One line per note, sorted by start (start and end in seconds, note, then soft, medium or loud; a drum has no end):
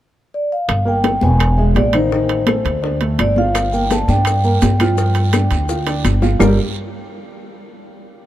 0.34 0.50 D5 medium
0.52 0.89 F5 medium
0.68 1.19 G1 medium
0.68 high bongo medium
0.68 high conga soft
0.68 high timbale medium
0.68 claves medium
0.85 1.15 A#3 medium
0.85 1.15 A#4 medium
0.85 1.24 G5 medium
0.85 high bongo soft
0.85 high conga soft
1.04 high bongo medium
1.04 high conga medium
1.04 high timbale medium
1.21 1.72 E1 medium
1.21 1.52 B3 medium
1.21 1.52 B4 medium
1.21 1.60 G#5 medium
1.21 high bongo soft
1.21 high conga medium
1.39 high bongo medium
1.39 high conga soft
1.39 high timbale medium
1.39 claves medium
1.57 1.87 G#3 medium
1.57 1.88 G#4 medium
1.57 1.77 E5 medium
1.57 high conga soft
1.75 2.59 A1 medium
1.75 1.93 D5 medium
1.75 high bongo soft
1.75 low bongo medium
1.75 high conga medium
1.75 high timbale medium
1.75 low timbale medium
1.93 2.09 D#3 medium
1.93 2.09 D#4 medium
1.93 2.97 C5 medium
1.93 high bongo soft
1.93 high conga medium
1.93 high timbale medium
1.93 claves medium
2.11 2.41 D#3 medium
2.11 2.42 D#4 medium
2.11 high bongo medium
2.11 high conga soft
2.29 high bongo soft
2.29 high conga soft
2.29 high timbale medium
2.47 2.77 A3 medium
2.47 2.77 A4 medium
2.47 high bongo medium
2.47 high conga medium
2.47 high timbale medium
2.47 claves medium
2.64 3.15 D2 medium
2.64 high bongo soft
2.64 high conga soft
2.64 high timbale medium
2.82 2.98 D4 medium
2.82 2.97 D5 medium
2.82 high bongo medium
2.82 high conga soft
3.01 3.30 A3 medium
3.01 3.31 A4 medium
3.01 high conga soft
3.01 high timbale medium
3.18 4.02 G1 medium
3.18 3.38 D5 medium
3.18 high bongo soft
3.18 low bongo medium
3.18 high conga medium
3.18 high timbale medium
3.18 claves medium
3.36 3.67 F4 medium
3.36 3.67 F5 medium
3.36 3.71 F5 loud
3.36 high bongo soft
3.36 high conga medium
3.55 high bongo medium
3.55 high conga soft
3.55 high timbale medium
3.55 long guiro medium
3.55 claves medium
3.55 maracas medium
3.73 4.02 A#3 medium
3.73 4.03 A#4 medium
3.73 3.91 G5 medium
3.73 high bongo soft
3.73 high conga soft
3.73 maracas soft
3.91 4.08 A5 medium
3.91 high bongo medium
3.91 high conga medium
3.91 high timbale medium
3.91 short guiro medium
3.91 maracas medium
4.08 4.58 G2 medium
4.08 4.38 D4 medium
4.08 4.38 D5 medium
4.08 6.01 G5 loud
4.08 high bongo soft
4.08 high conga medium
4.08 short guiro medium
4.08 maracas soft
4.25 high bongo medium
4.25 high conga soft
4.25 high timbale medium
4.25 long guiro medium
4.25 claves medium
4.25 maracas medium
4.44 4.73 A#3 medium
4.44 4.74 A#4 medium
4.44 high conga soft
4.44 maracas soft
4.62 5.45 G2 medium
4.62 high bongo soft
4.62 low bongo medium
4.62 high conga medium
4.62 high timbale medium
4.62 low timbale medium
4.62 short guiro medium
4.62 maracas medium
4.80 4.95 F3 medium
4.80 4.95 F4 medium
4.80 high bongo soft
4.80 high conga medium
4.80 high timbale medium
4.80 short guiro medium
4.80 claves medium
4.80 maracas soft
4.98 5.27 F3 medium
4.98 5.27 F4 medium
4.98 high bongo medium
4.98 high conga soft
4.98 long guiro medium
4.98 maracas medium
5.15 high bongo soft
5.15 high conga soft
5.15 high timbale medium
5.15 maracas soft
5.33 5.62 D4 medium
5.33 5.62 D5 medium
5.33 high bongo medium
5.33 high conga medium
5.33 high timbale medium
5.33 short guiro medium
5.33 claves medium
5.33 maracas medium
5.51 6.01 D2 medium
5.51 high bongo soft
5.51 high conga soft
5.51 high timbale medium
5.51 short guiro medium
5.51 maracas soft
5.69 5.84 F4 medium
5.69 5.84 F5 medium
5.69 high bongo medium
5.69 high conga soft
5.69 long guiro medium
5.69 maracas medium
5.86 6.16 D4 medium
5.86 6.16 D5 medium
5.86 high bongo medium
5.86 high conga soft
5.86 high timbale medium
5.86 maracas soft
6.04 6.36 G1 medium
6.04 low bongo medium
6.04 high conga medium
6.04 high timbale medium
6.04 short guiro medium
6.04 claves medium
6.04 maracas medium
6.22 6.37 F4 medium
6.22 6.37 F5 medium
6.22 low bongo medium
6.22 high conga medium
6.22 short guiro medium
6.22 maracas soft
6.39 6.57 G1 medium
6.39 6.56 G3 medium
6.39 6.56 D4 medium
6.39 6.56 F4 medium
6.39 6.56 G4 medium
6.39 6.56 A4 medium
6.39 6.57 A#4 loud
6.39 low bongo medium
6.39 low conga medium
6.39 low timbale medium
6.39 long guiro medium
6.39 claves medium
6.39 maracas medium